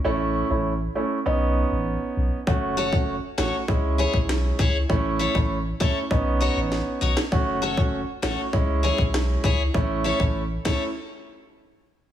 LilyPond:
<<
  \new Staff \with { instrumentName = "Steel-string acoustic guitar" } { \time 4/4 \key a \lydian \tempo 4 = 99 r1 | r8 <fis' a' cis''>8 r8 <fis' a' cis''>8 r8 <e' gis' cis''>8 r8 <e' gis' cis''>8 | r8 <e' a' cis''>8 r8 <e' a' cis''>8 r8 <dis' fis' cis''>8 r8 <dis' fis' cis''>8 | r8 <fis' a' cis''>8 r8 <fis' a' cis''>8 r8 <e' gis' cis''>8 r8 <e' gis' cis''>8 |
r8 <e' a' cis''>8 r8 <e' a' cis''>8 r2 | }
  \new Staff \with { instrumentName = "Grand piano" } { \time 4/4 \key a \lydian <a cis' e'>8. <a cis' e'>16 r8 <a cis' e'>16 r16 <b cis' dis'>4.~ <b cis' dis'>16 r16 | <a cis' fis'>8. <a cis' fis'>16 r8 <a cis' fis'>16 r16 <gis cis' e'>4.~ <gis cis' e'>16 r16 | <a cis' e'>8. <a cis' e'>16 r8 <a cis' e'>16 r16 <b cis' dis'>4.~ <b cis' dis'>16 r16 | <a cis' fis'>8. <a cis' fis'>16 r8 <a cis' fis'>16 r16 <gis cis' e'>4.~ <gis cis' e'>16 r16 |
<a cis' e'>8. <a cis' e'>16 r8 <a cis' e'>16 r2 r16 | }
  \new Staff \with { instrumentName = "Sub bass" } { \clef bass \time 4/4 \key a \lydian a,,8. a,,8. r8 b,,8. a,,8 r16 b,,16 r16 | fis,,4~ fis,,16 r16 a,,16 r16 cis,8. b,,8. cis,8 | a,,8. a,,8. r8 b,,8. a,,8 r16 b,,16 r16 | fis,,4~ fis,,16 r16 a,,16 r16 cis,8. b,,8. cis,8 |
a,,8. a,,8. r2 r8 | }
  \new DrumStaff \with { instrumentName = "Drums" } \drummode { \time 4/4 r4 r4 r4 r4 | bd8. bd16 r8 <ss sn>8 bd8. bd16 <ss sn>8 bd8 | bd8. bd16 r8 bd8 bd4 sn8. <ss sn>16 | bd8. bd16 r8 <ss sn>8 bd8. bd16 <ss sn>8 bd8 |
bd8. bd16 r8 <bd ss sn>8 r4 r4 | }
>>